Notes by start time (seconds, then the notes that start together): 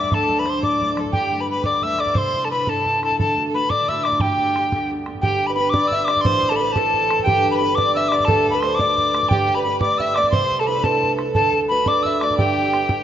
Already playing: G3 A3 B3 D4 E4 D5 D6
0.04 bodhran
0.10 D2 A4 A5, bodhran
0.28 F#3 A3 D4, bodhran
0.39 B4 B5
0.45 F#3 A3 D4 C5, bodhran
0.50 C6
0.62 A2 D5 D6, bodhran
0.80 F#3 A3 D4, bodhran
0.96 F#3 A3 D4 A4, bodhran
1.06 bodhran
1.12 G2 G4 G5, bodhran
1.31 G3 A3 B3, bodhran
1.40 B4 B5
1.45 G3 A3
1.49 B3 B4 B5
1.64 D2 D5 D6, bodhran
1.82 G3 A3 B3 E5 E6, bodhran
1.98 G3 A3 B3 D5 D6, bodhran
2.07 bodhran
2.14 C3 C5, bodhran
2.18 C6
2.30 C4 D4
2.34 E4, bodhran
2.44 A4 A5
2.51 C4 D4 E4 B4 B5
2.66 G2 A4 A5, bodhran
2.85 C4 D4 E4, bodhran
3.01 C4 D4 E4 A4 A5, bodhran
3.11 bodhran
3.18 D3 A4 A5, bodhran
3.35 A3 D4 F#4, bodhran
3.49 A4
3.54 A3 D4 F#4 B4 B5
3.70 A2 D5 D6, bodhran
3.89 A3 D4 F#4 E5 E6, bodhran
4.03 A3 D4 F#4 D5 D6, bodhran
4.12 bodhran
4.20 G2 G4 G5, bodhran
4.38 B3 D4, bodhran
4.42 G4
4.56 B3 D4 G4, bodhran
4.72 D2, bodhran
4.91 B3 D4 G4
5.06 B3 D4 G4, bodhran
5.15 bodhran
5.21 G1 G2 G4 G5, bodhran
5.47 B4 B5
5.54 B3 D4 B4 B5
5.59 G4
5.70 D6
5.74 B3 D4 G4 D5, bodhran
5.88 E6, bodhran
5.92 E5
6.02 D6 E6
6.08 B3 D4 G4 D5, bodhran
6.17 bodhran
6.21 A1 C5 C6, bodhran
6.26 A2 C5
6.43 bodhran
6.49 A4 A5
6.56 C4 E4 B4 B5
6.60 A4 B4
6.72 C4 A5, bodhran
6.76 E4 A4
6.94 bodhran
7.10 C4 E4 A4, bodhran
7.19 G5, bodhran
7.26 G1 G2 G4, bodhran
7.46 bodhran
7.51 B4 B5
7.57 B3 B5
7.61 D4 G4 B4
7.75 B3 D4 G4 D5 D6, bodhran
7.95 E5 E6
8.08 B3 D4 G4 D5 D6, bodhran
8.13 D5
8.20 bodhran
8.25 D1 D2 A4 A5, bodhran
8.47 B5, bodhran
8.54 B4
8.61 A3 D4 F#4 C5 C6, bodhran
8.75 A3 D6
8.79 D4 F#4 D5, bodhran
8.98 bodhran
9.13 A3 D4 F#4, bodhran
9.23 bodhran
9.29 G1 G2 G4 G5, bodhran
9.34 G4
9.48 bodhran
9.55 B4 B5
9.63 A3 B3 G4 B4 B5
9.80 A3 B3 G4 D5 D6, bodhran
9.98 E5 E6, bodhran
10.14 A3 B3 G4 D5 D6, bodhran
10.24 bodhran
10.31 C2 C3 C5 C6, bodhran
10.52 bodhran
10.60 A4 A5
10.66 C4 D4 E4 B4 B5
10.82 C4 D4 E4 A4 A5, bodhran
11.03 bodhran
11.18 C4 D4 E4, bodhran
11.35 D2 D3 A4 A5, bodhran
11.53 bodhran
11.68 A3 D4 F#4 B4 B5
11.86 A3 D4 F#4 D5 D6, bodhran
12.03 E5 E6, bodhran
12.20 A3 D4 F#4 D5 D6, bodhran
12.31 bodhran
12.37 G1 G2 G4 G5, bodhran
12.57 bodhran
12.73 B3 D4 G4, bodhran
12.89 B3 D4 G4, bodhran